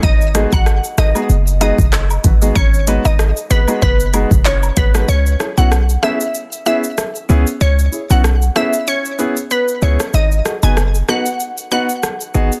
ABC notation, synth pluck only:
X:1
M:4/4
L:1/16
Q:"Swing 16ths" 1/4=95
K:C#m
V:1 name="Synth pluck"
d z2 f2 z d2 z2 d z4 z | c z2 d2 z B2 B3 z c z B z | c z2 f2 z e2 z2 e z4 z | c z2 f2 z e2 c3 z B z c z |
d z2 g2 z f2 z2 f z4 z |]